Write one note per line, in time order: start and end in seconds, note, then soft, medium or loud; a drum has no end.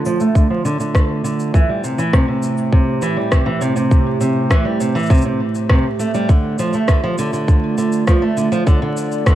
0.00 1.54 D3 medium
0.00 9.35 A3 medium
0.00 1.54 F4 medium
0.05 0.19 F3 medium
0.05 shaker medium
0.20 0.34 A3 medium
0.20 shaker soft
0.35 0.50 D3 medium
0.35 kick loud
0.35 shaker soft
0.50 0.64 F3 medium
0.65 0.78 D3 loud
0.65 shaker medium
0.80 1.23 D3 medium
0.80 shaker soft
0.95 kick loud
0.95 cross-stick medium
0.95 shaker soft
1.24 1.53 D3 medium
1.24 shaker medium
1.40 shaker soft
1.54 6.29 A2 medium
1.54 1.68 E3 medium
1.54 kick loud
1.54 shaker soft
1.69 1.82 G3 medium
1.84 1.98 C3 medium
1.84 shaker medium
1.88 7.23 G4 medium
1.98 2.12 E3 medium
1.98 shaker soft
2.13 2.27 C3 medium
2.13 kick loud
2.13 cross-stick medium
2.13 shaker soft
2.19 8.20 C5 medium
2.28 2.71 C3 medium
2.43 shaker medium
2.58 shaker soft
2.73 3.01 C3 medium
2.73 kick loud
3.02 3.16 E3 loud
3.02 shaker medium
3.17 3.30 G3 medium
3.31 3.46 C3 medium
3.31 kick loud
3.31 cross-stick loud
3.31 shaker soft
3.46 3.60 E3 medium
3.61 3.75 C3 medium
3.61 shaker medium
3.76 4.19 C3 medium
3.76 shaker soft
3.91 kick loud
3.91 shaker soft
4.21 4.49 C3 medium
4.21 shaker medium
4.50 4.64 E3 medium
4.50 kick loud
4.50 cross-stick loud
4.50 shaker soft
4.65 4.79 G3 medium
4.80 4.95 C3 medium
4.80 shaker medium
4.95 5.09 E3 medium
4.95 shaker soft
4.99 shaker soft
5.03 shaker soft
5.06 kick loud
5.06 shaker soft
5.10 5.24 C3 medium
5.10 shaker soft
5.14 shaker soft
5.18 shaker soft
5.21 5.39 C3 medium
5.21 shaker soft
5.55 shaker soft
5.69 5.84 C3 medium
5.69 kick loud
5.69 cross-stick medium
5.99 6.13 A3 medium
5.99 shaker medium
6.14 6.28 G3 loud
6.14 shaker soft
6.29 6.58 D3 medium
6.29 9.35 D3 medium
6.29 kick loud
6.29 shaker soft
6.45 9.35 F4 medium
6.59 6.73 F3 medium
6.59 shaker medium
6.73 6.87 A3 medium
6.73 shaker soft
6.88 7.03 D3 medium
6.88 kick medium
6.88 cross-stick medium
6.88 shaker soft
7.04 7.17 F3 medium
7.08 9.35 D5 medium
7.18 7.32 D3 medium
7.18 shaker medium
7.33 7.76 D3 medium
7.33 shaker soft
7.48 kick loud
7.48 shaker soft
7.78 8.06 D3 medium
7.78 shaker medium
7.92 shaker soft
8.07 8.21 F3 medium
8.07 kick medium
8.07 cross-stick medium
8.07 shaker soft
8.22 8.36 A3 medium
8.37 8.51 D3 medium
8.37 shaker medium
8.52 8.65 F3 loud
8.52 shaker soft
8.66 8.80 D3 loud
8.66 kick loud
8.66 shaker soft
8.82 9.25 D3 medium
8.97 shaker medium
9.12 shaker soft
9.26 9.35 D3 medium
9.26 kick loud
9.26 cross-stick medium
9.26 shaker soft